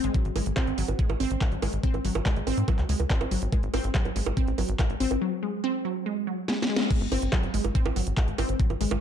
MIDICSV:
0, 0, Header, 1, 4, 480
1, 0, Start_track
1, 0, Tempo, 422535
1, 165, Time_signature, 4, 2, 24, 8
1, 10231, End_track
2, 0, Start_track
2, 0, Title_t, "Synth arpeggio sound"
2, 0, Program_c, 0, 84
2, 45, Note_on_c, 0, 56, 82
2, 103, Note_off_c, 0, 56, 0
2, 164, Note_on_c, 0, 54, 83
2, 200, Note_off_c, 0, 54, 0
2, 405, Note_on_c, 0, 56, 77
2, 493, Note_off_c, 0, 56, 0
2, 644, Note_on_c, 0, 60, 108
2, 733, Note_off_c, 0, 60, 0
2, 884, Note_on_c, 0, 54, 82
2, 920, Note_off_c, 0, 54, 0
2, 1124, Note_on_c, 0, 56, 84
2, 1213, Note_off_c, 0, 56, 0
2, 1364, Note_on_c, 0, 60, 101
2, 1453, Note_off_c, 0, 60, 0
2, 1605, Note_on_c, 0, 54, 82
2, 1640, Note_off_c, 0, 54, 0
2, 1845, Note_on_c, 0, 56, 80
2, 1933, Note_off_c, 0, 56, 0
2, 2085, Note_on_c, 0, 60, 101
2, 2173, Note_off_c, 0, 60, 0
2, 2325, Note_on_c, 0, 54, 75
2, 2360, Note_off_c, 0, 54, 0
2, 2565, Note_on_c, 0, 56, 86
2, 2653, Note_off_c, 0, 56, 0
2, 2805, Note_on_c, 0, 60, 103
2, 2893, Note_off_c, 0, 60, 0
2, 3044, Note_on_c, 0, 54, 86
2, 3080, Note_off_c, 0, 54, 0
2, 3285, Note_on_c, 0, 56, 76
2, 3373, Note_off_c, 0, 56, 0
2, 3524, Note_on_c, 0, 60, 99
2, 3613, Note_off_c, 0, 60, 0
2, 3764, Note_on_c, 0, 54, 79
2, 3800, Note_off_c, 0, 54, 0
2, 4004, Note_on_c, 0, 56, 89
2, 4093, Note_off_c, 0, 56, 0
2, 4244, Note_on_c, 0, 60, 99
2, 4333, Note_off_c, 0, 60, 0
2, 4484, Note_on_c, 0, 54, 81
2, 4520, Note_off_c, 0, 54, 0
2, 4724, Note_on_c, 0, 56, 77
2, 4813, Note_off_c, 0, 56, 0
2, 4965, Note_on_c, 0, 60, 100
2, 5053, Note_off_c, 0, 60, 0
2, 5204, Note_on_c, 0, 54, 74
2, 5240, Note_off_c, 0, 54, 0
2, 5445, Note_on_c, 0, 56, 82
2, 5533, Note_off_c, 0, 56, 0
2, 5685, Note_on_c, 0, 60, 106
2, 5773, Note_off_c, 0, 60, 0
2, 5925, Note_on_c, 0, 54, 86
2, 5960, Note_off_c, 0, 54, 0
2, 6165, Note_on_c, 0, 56, 81
2, 6253, Note_off_c, 0, 56, 0
2, 6404, Note_on_c, 0, 60, 106
2, 6493, Note_off_c, 0, 60, 0
2, 6644, Note_on_c, 0, 54, 80
2, 6680, Note_off_c, 0, 54, 0
2, 6885, Note_on_c, 0, 56, 84
2, 6973, Note_off_c, 0, 56, 0
2, 7125, Note_on_c, 0, 54, 74
2, 7160, Note_off_c, 0, 54, 0
2, 7365, Note_on_c, 0, 56, 84
2, 7400, Note_off_c, 0, 56, 0
2, 7605, Note_on_c, 0, 56, 83
2, 7663, Note_off_c, 0, 56, 0
2, 7724, Note_on_c, 0, 56, 79
2, 7783, Note_off_c, 0, 56, 0
2, 7844, Note_on_c, 0, 56, 85
2, 7932, Note_off_c, 0, 56, 0
2, 8084, Note_on_c, 0, 60, 102
2, 8173, Note_off_c, 0, 60, 0
2, 8324, Note_on_c, 0, 54, 82
2, 8360, Note_off_c, 0, 54, 0
2, 8564, Note_on_c, 0, 56, 78
2, 8653, Note_off_c, 0, 56, 0
2, 8804, Note_on_c, 0, 60, 102
2, 8893, Note_off_c, 0, 60, 0
2, 9045, Note_on_c, 0, 54, 76
2, 9080, Note_off_c, 0, 54, 0
2, 9284, Note_on_c, 0, 56, 84
2, 9373, Note_off_c, 0, 56, 0
2, 9525, Note_on_c, 0, 60, 103
2, 9613, Note_off_c, 0, 60, 0
2, 9765, Note_on_c, 0, 54, 82
2, 9800, Note_off_c, 0, 54, 0
2, 10005, Note_on_c, 0, 56, 81
2, 10093, Note_off_c, 0, 56, 0
2, 10231, End_track
3, 0, Start_track
3, 0, Title_t, "Analog synth bass"
3, 0, Program_c, 1, 38
3, 45, Note_on_c, 1, 32, 94
3, 112, Note_off_c, 1, 32, 0
3, 285, Note_on_c, 1, 32, 93
3, 352, Note_off_c, 1, 32, 0
3, 405, Note_on_c, 1, 32, 98
3, 473, Note_off_c, 1, 32, 0
3, 525, Note_on_c, 1, 32, 91
3, 592, Note_off_c, 1, 32, 0
3, 765, Note_on_c, 1, 32, 91
3, 833, Note_off_c, 1, 32, 0
3, 885, Note_on_c, 1, 32, 98
3, 952, Note_off_c, 1, 32, 0
3, 1005, Note_on_c, 1, 32, 91
3, 1072, Note_off_c, 1, 32, 0
3, 1245, Note_on_c, 1, 33, 83
3, 1312, Note_off_c, 1, 33, 0
3, 1365, Note_on_c, 1, 32, 97
3, 1432, Note_off_c, 1, 32, 0
3, 1485, Note_on_c, 1, 32, 91
3, 1552, Note_off_c, 1, 32, 0
3, 1725, Note_on_c, 1, 32, 84
3, 1792, Note_off_c, 1, 32, 0
3, 1845, Note_on_c, 1, 32, 104
3, 1913, Note_off_c, 1, 32, 0
3, 1965, Note_on_c, 1, 32, 91
3, 2033, Note_off_c, 1, 32, 0
3, 2205, Note_on_c, 1, 32, 89
3, 2273, Note_off_c, 1, 32, 0
3, 2325, Note_on_c, 1, 32, 97
3, 2392, Note_off_c, 1, 32, 0
3, 2445, Note_on_c, 1, 32, 93
3, 2512, Note_off_c, 1, 32, 0
3, 2684, Note_on_c, 1, 32, 90
3, 2752, Note_off_c, 1, 32, 0
3, 2805, Note_on_c, 1, 32, 106
3, 2872, Note_off_c, 1, 32, 0
3, 2925, Note_on_c, 1, 44, 92
3, 2992, Note_off_c, 1, 44, 0
3, 3165, Note_on_c, 1, 37, 85
3, 3232, Note_off_c, 1, 37, 0
3, 3285, Note_on_c, 1, 37, 100
3, 3352, Note_off_c, 1, 37, 0
3, 3405, Note_on_c, 1, 37, 89
3, 3473, Note_off_c, 1, 37, 0
3, 3645, Note_on_c, 1, 32, 85
3, 3712, Note_off_c, 1, 32, 0
3, 3765, Note_on_c, 1, 32, 99
3, 3832, Note_off_c, 1, 32, 0
3, 3885, Note_on_c, 1, 32, 95
3, 3952, Note_off_c, 1, 32, 0
3, 4125, Note_on_c, 1, 32, 88
3, 4192, Note_off_c, 1, 32, 0
3, 4245, Note_on_c, 1, 32, 99
3, 4312, Note_off_c, 1, 32, 0
3, 4365, Note_on_c, 1, 32, 92
3, 4432, Note_off_c, 1, 32, 0
3, 4605, Note_on_c, 1, 32, 93
3, 4672, Note_off_c, 1, 32, 0
3, 4725, Note_on_c, 1, 32, 102
3, 4792, Note_off_c, 1, 32, 0
3, 4845, Note_on_c, 1, 32, 94
3, 4912, Note_off_c, 1, 32, 0
3, 5085, Note_on_c, 1, 33, 90
3, 5152, Note_off_c, 1, 33, 0
3, 5205, Note_on_c, 1, 32, 106
3, 5272, Note_off_c, 1, 32, 0
3, 5325, Note_on_c, 1, 32, 94
3, 5392, Note_off_c, 1, 32, 0
3, 5565, Note_on_c, 1, 32, 86
3, 5632, Note_off_c, 1, 32, 0
3, 5684, Note_on_c, 1, 32, 100
3, 5752, Note_off_c, 1, 32, 0
3, 5804, Note_on_c, 1, 32, 93
3, 5872, Note_off_c, 1, 32, 0
3, 7964, Note_on_c, 1, 32, 91
3, 8032, Note_off_c, 1, 32, 0
3, 8084, Note_on_c, 1, 32, 99
3, 8152, Note_off_c, 1, 32, 0
3, 8204, Note_on_c, 1, 32, 94
3, 8272, Note_off_c, 1, 32, 0
3, 8444, Note_on_c, 1, 32, 93
3, 8512, Note_off_c, 1, 32, 0
3, 8564, Note_on_c, 1, 32, 103
3, 8632, Note_off_c, 1, 32, 0
3, 8684, Note_on_c, 1, 32, 89
3, 8752, Note_off_c, 1, 32, 0
3, 8925, Note_on_c, 1, 33, 85
3, 8992, Note_off_c, 1, 33, 0
3, 9045, Note_on_c, 1, 32, 98
3, 9112, Note_off_c, 1, 32, 0
3, 9165, Note_on_c, 1, 32, 91
3, 9232, Note_off_c, 1, 32, 0
3, 9405, Note_on_c, 1, 32, 88
3, 9473, Note_off_c, 1, 32, 0
3, 9525, Note_on_c, 1, 32, 96
3, 9593, Note_off_c, 1, 32, 0
3, 9645, Note_on_c, 1, 32, 90
3, 9712, Note_off_c, 1, 32, 0
3, 9885, Note_on_c, 1, 32, 95
3, 9953, Note_off_c, 1, 32, 0
3, 10005, Note_on_c, 1, 32, 106
3, 10072, Note_off_c, 1, 32, 0
3, 10125, Note_on_c, 1, 32, 98
3, 10192, Note_off_c, 1, 32, 0
3, 10231, End_track
4, 0, Start_track
4, 0, Title_t, "Drums"
4, 44, Note_on_c, 9, 42, 49
4, 158, Note_off_c, 9, 42, 0
4, 164, Note_on_c, 9, 36, 111
4, 164, Note_on_c, 9, 42, 49
4, 278, Note_off_c, 9, 36, 0
4, 278, Note_off_c, 9, 42, 0
4, 284, Note_on_c, 9, 42, 26
4, 398, Note_off_c, 9, 42, 0
4, 404, Note_on_c, 9, 46, 108
4, 404, Note_on_c, 9, 60, 42
4, 518, Note_off_c, 9, 46, 0
4, 518, Note_off_c, 9, 60, 0
4, 524, Note_on_c, 9, 42, 52
4, 638, Note_off_c, 9, 42, 0
4, 644, Note_on_c, 9, 36, 127
4, 644, Note_on_c, 9, 39, 121
4, 644, Note_on_c, 9, 42, 51
4, 644, Note_on_c, 9, 60, 87
4, 758, Note_off_c, 9, 36, 0
4, 758, Note_off_c, 9, 39, 0
4, 758, Note_off_c, 9, 42, 0
4, 758, Note_off_c, 9, 60, 0
4, 765, Note_on_c, 9, 42, 25
4, 878, Note_off_c, 9, 42, 0
4, 884, Note_on_c, 9, 46, 108
4, 998, Note_off_c, 9, 46, 0
4, 1004, Note_on_c, 9, 42, 50
4, 1004, Note_on_c, 9, 60, 42
4, 1118, Note_off_c, 9, 42, 0
4, 1118, Note_off_c, 9, 60, 0
4, 1124, Note_on_c, 9, 36, 116
4, 1125, Note_on_c, 9, 42, 52
4, 1238, Note_off_c, 9, 36, 0
4, 1238, Note_off_c, 9, 42, 0
4, 1244, Note_on_c, 9, 42, 24
4, 1244, Note_on_c, 9, 60, 82
4, 1358, Note_off_c, 9, 42, 0
4, 1358, Note_off_c, 9, 60, 0
4, 1364, Note_on_c, 9, 46, 106
4, 1478, Note_off_c, 9, 46, 0
4, 1484, Note_on_c, 9, 42, 52
4, 1598, Note_off_c, 9, 42, 0
4, 1604, Note_on_c, 9, 36, 122
4, 1605, Note_on_c, 9, 39, 110
4, 1605, Note_on_c, 9, 42, 46
4, 1605, Note_on_c, 9, 60, 38
4, 1718, Note_off_c, 9, 36, 0
4, 1718, Note_off_c, 9, 39, 0
4, 1718, Note_off_c, 9, 42, 0
4, 1718, Note_off_c, 9, 60, 0
4, 1725, Note_on_c, 9, 42, 27
4, 1838, Note_off_c, 9, 42, 0
4, 1845, Note_on_c, 9, 46, 109
4, 1845, Note_on_c, 9, 60, 88
4, 1958, Note_off_c, 9, 46, 0
4, 1958, Note_off_c, 9, 60, 0
4, 1964, Note_on_c, 9, 42, 50
4, 2078, Note_off_c, 9, 42, 0
4, 2084, Note_on_c, 9, 36, 108
4, 2085, Note_on_c, 9, 42, 54
4, 2198, Note_off_c, 9, 36, 0
4, 2198, Note_off_c, 9, 42, 0
4, 2205, Note_on_c, 9, 42, 26
4, 2205, Note_on_c, 9, 60, 43
4, 2318, Note_off_c, 9, 42, 0
4, 2318, Note_off_c, 9, 60, 0
4, 2324, Note_on_c, 9, 46, 102
4, 2438, Note_off_c, 9, 46, 0
4, 2445, Note_on_c, 9, 42, 53
4, 2445, Note_on_c, 9, 60, 83
4, 2558, Note_off_c, 9, 42, 0
4, 2558, Note_off_c, 9, 60, 0
4, 2564, Note_on_c, 9, 36, 117
4, 2565, Note_on_c, 9, 39, 117
4, 2565, Note_on_c, 9, 42, 57
4, 2678, Note_off_c, 9, 36, 0
4, 2678, Note_off_c, 9, 39, 0
4, 2678, Note_off_c, 9, 42, 0
4, 2685, Note_on_c, 9, 42, 26
4, 2799, Note_off_c, 9, 42, 0
4, 2805, Note_on_c, 9, 46, 104
4, 2805, Note_on_c, 9, 60, 41
4, 2918, Note_off_c, 9, 46, 0
4, 2918, Note_off_c, 9, 60, 0
4, 2925, Note_on_c, 9, 42, 54
4, 3038, Note_off_c, 9, 42, 0
4, 3044, Note_on_c, 9, 36, 117
4, 3045, Note_on_c, 9, 42, 52
4, 3045, Note_on_c, 9, 60, 81
4, 3158, Note_off_c, 9, 36, 0
4, 3158, Note_off_c, 9, 42, 0
4, 3158, Note_off_c, 9, 60, 0
4, 3165, Note_on_c, 9, 39, 36
4, 3165, Note_on_c, 9, 42, 26
4, 3278, Note_off_c, 9, 39, 0
4, 3278, Note_off_c, 9, 42, 0
4, 3285, Note_on_c, 9, 46, 109
4, 3398, Note_off_c, 9, 46, 0
4, 3405, Note_on_c, 9, 42, 54
4, 3405, Note_on_c, 9, 60, 41
4, 3518, Note_off_c, 9, 42, 0
4, 3518, Note_off_c, 9, 60, 0
4, 3524, Note_on_c, 9, 36, 118
4, 3525, Note_on_c, 9, 39, 108
4, 3525, Note_on_c, 9, 42, 48
4, 3638, Note_off_c, 9, 36, 0
4, 3638, Note_off_c, 9, 39, 0
4, 3638, Note_off_c, 9, 42, 0
4, 3645, Note_on_c, 9, 42, 27
4, 3645, Note_on_c, 9, 60, 85
4, 3759, Note_off_c, 9, 42, 0
4, 3759, Note_off_c, 9, 60, 0
4, 3765, Note_on_c, 9, 46, 106
4, 3878, Note_off_c, 9, 46, 0
4, 3885, Note_on_c, 9, 42, 52
4, 3998, Note_off_c, 9, 42, 0
4, 4004, Note_on_c, 9, 36, 107
4, 4005, Note_on_c, 9, 42, 54
4, 4005, Note_on_c, 9, 60, 39
4, 4118, Note_off_c, 9, 36, 0
4, 4118, Note_off_c, 9, 42, 0
4, 4118, Note_off_c, 9, 60, 0
4, 4124, Note_on_c, 9, 42, 28
4, 4238, Note_off_c, 9, 42, 0
4, 4244, Note_on_c, 9, 46, 104
4, 4244, Note_on_c, 9, 60, 85
4, 4358, Note_off_c, 9, 46, 0
4, 4358, Note_off_c, 9, 60, 0
4, 4364, Note_on_c, 9, 42, 56
4, 4478, Note_off_c, 9, 42, 0
4, 4484, Note_on_c, 9, 36, 117
4, 4484, Note_on_c, 9, 39, 117
4, 4484, Note_on_c, 9, 42, 57
4, 4598, Note_off_c, 9, 36, 0
4, 4598, Note_off_c, 9, 39, 0
4, 4598, Note_off_c, 9, 42, 0
4, 4604, Note_on_c, 9, 42, 27
4, 4604, Note_on_c, 9, 60, 40
4, 4718, Note_off_c, 9, 42, 0
4, 4718, Note_off_c, 9, 60, 0
4, 4724, Note_on_c, 9, 46, 98
4, 4838, Note_off_c, 9, 46, 0
4, 4844, Note_on_c, 9, 42, 55
4, 4844, Note_on_c, 9, 60, 82
4, 4958, Note_off_c, 9, 42, 0
4, 4958, Note_off_c, 9, 60, 0
4, 4964, Note_on_c, 9, 36, 113
4, 4964, Note_on_c, 9, 42, 55
4, 5077, Note_off_c, 9, 42, 0
4, 5078, Note_off_c, 9, 36, 0
4, 5084, Note_on_c, 9, 42, 27
4, 5197, Note_off_c, 9, 42, 0
4, 5204, Note_on_c, 9, 46, 103
4, 5204, Note_on_c, 9, 60, 41
4, 5318, Note_off_c, 9, 46, 0
4, 5318, Note_off_c, 9, 60, 0
4, 5324, Note_on_c, 9, 42, 54
4, 5438, Note_off_c, 9, 42, 0
4, 5444, Note_on_c, 9, 36, 116
4, 5444, Note_on_c, 9, 39, 111
4, 5444, Note_on_c, 9, 42, 54
4, 5444, Note_on_c, 9, 60, 81
4, 5558, Note_off_c, 9, 36, 0
4, 5558, Note_off_c, 9, 39, 0
4, 5558, Note_off_c, 9, 42, 0
4, 5558, Note_off_c, 9, 60, 0
4, 5564, Note_on_c, 9, 42, 28
4, 5678, Note_off_c, 9, 42, 0
4, 5684, Note_on_c, 9, 46, 108
4, 5798, Note_off_c, 9, 46, 0
4, 5804, Note_on_c, 9, 42, 53
4, 5804, Note_on_c, 9, 60, 43
4, 5918, Note_off_c, 9, 42, 0
4, 5918, Note_off_c, 9, 60, 0
4, 7364, Note_on_c, 9, 38, 68
4, 7478, Note_off_c, 9, 38, 0
4, 7524, Note_on_c, 9, 38, 81
4, 7638, Note_off_c, 9, 38, 0
4, 7684, Note_on_c, 9, 38, 97
4, 7798, Note_off_c, 9, 38, 0
4, 7844, Note_on_c, 9, 36, 118
4, 7844, Note_on_c, 9, 42, 54
4, 7844, Note_on_c, 9, 49, 101
4, 7958, Note_off_c, 9, 36, 0
4, 7958, Note_off_c, 9, 42, 0
4, 7958, Note_off_c, 9, 49, 0
4, 7964, Note_on_c, 9, 42, 30
4, 8078, Note_off_c, 9, 42, 0
4, 8084, Note_on_c, 9, 46, 106
4, 8084, Note_on_c, 9, 60, 37
4, 8198, Note_off_c, 9, 46, 0
4, 8198, Note_off_c, 9, 60, 0
4, 8204, Note_on_c, 9, 42, 58
4, 8318, Note_off_c, 9, 42, 0
4, 8324, Note_on_c, 9, 36, 123
4, 8324, Note_on_c, 9, 39, 127
4, 8324, Note_on_c, 9, 42, 58
4, 8324, Note_on_c, 9, 60, 80
4, 8438, Note_off_c, 9, 36, 0
4, 8438, Note_off_c, 9, 39, 0
4, 8438, Note_off_c, 9, 42, 0
4, 8438, Note_off_c, 9, 60, 0
4, 8444, Note_on_c, 9, 42, 26
4, 8558, Note_off_c, 9, 42, 0
4, 8564, Note_on_c, 9, 46, 104
4, 8678, Note_off_c, 9, 46, 0
4, 8684, Note_on_c, 9, 42, 59
4, 8684, Note_on_c, 9, 60, 39
4, 8798, Note_off_c, 9, 42, 0
4, 8798, Note_off_c, 9, 60, 0
4, 8804, Note_on_c, 9, 36, 113
4, 8804, Note_on_c, 9, 42, 55
4, 8918, Note_off_c, 9, 36, 0
4, 8918, Note_off_c, 9, 42, 0
4, 8924, Note_on_c, 9, 42, 27
4, 8924, Note_on_c, 9, 60, 79
4, 9038, Note_off_c, 9, 42, 0
4, 9038, Note_off_c, 9, 60, 0
4, 9044, Note_on_c, 9, 46, 112
4, 9158, Note_off_c, 9, 46, 0
4, 9164, Note_on_c, 9, 42, 58
4, 9278, Note_off_c, 9, 42, 0
4, 9284, Note_on_c, 9, 36, 127
4, 9284, Note_on_c, 9, 39, 114
4, 9284, Note_on_c, 9, 42, 55
4, 9284, Note_on_c, 9, 60, 37
4, 9398, Note_off_c, 9, 36, 0
4, 9398, Note_off_c, 9, 39, 0
4, 9398, Note_off_c, 9, 42, 0
4, 9398, Note_off_c, 9, 60, 0
4, 9404, Note_on_c, 9, 42, 28
4, 9518, Note_off_c, 9, 42, 0
4, 9524, Note_on_c, 9, 46, 113
4, 9524, Note_on_c, 9, 60, 82
4, 9638, Note_off_c, 9, 46, 0
4, 9638, Note_off_c, 9, 60, 0
4, 9644, Note_on_c, 9, 42, 57
4, 9757, Note_off_c, 9, 42, 0
4, 9764, Note_on_c, 9, 36, 118
4, 9764, Note_on_c, 9, 42, 54
4, 9878, Note_off_c, 9, 36, 0
4, 9878, Note_off_c, 9, 42, 0
4, 9884, Note_on_c, 9, 42, 26
4, 9884, Note_on_c, 9, 60, 38
4, 9998, Note_off_c, 9, 42, 0
4, 9998, Note_off_c, 9, 60, 0
4, 10004, Note_on_c, 9, 46, 107
4, 10118, Note_off_c, 9, 46, 0
4, 10124, Note_on_c, 9, 42, 55
4, 10124, Note_on_c, 9, 60, 76
4, 10231, Note_off_c, 9, 42, 0
4, 10231, Note_off_c, 9, 60, 0
4, 10231, End_track
0, 0, End_of_file